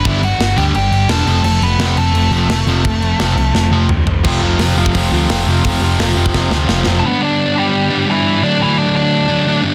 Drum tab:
CC |x-x-x-x-x-x-x-x-|x-x-x-x-x-x-x-x-|x-x-x-x---------|x---------------|
HH |----------------|----------------|----------------|----o---o---o---|
SD |----o-------o---|----o-------o---|----o---o-------|----o-------o---|
T2 |----------------|----------------|------------o---|----------------|
FT |----------------|----------------|--------------o-|----------------|
BD |o---------------|----------------|o---------------|o------oo-------|

CC |----------------|----------------|----------------|
HH |o---o-----------|----------------|----------------|
SD |----o---o-o-o-o-|----------------|----------------|
T2 |----------------|----------------|----------------|
FT |----------------|----------------|----------------|
BD |o------oo-------|----------------|----------------|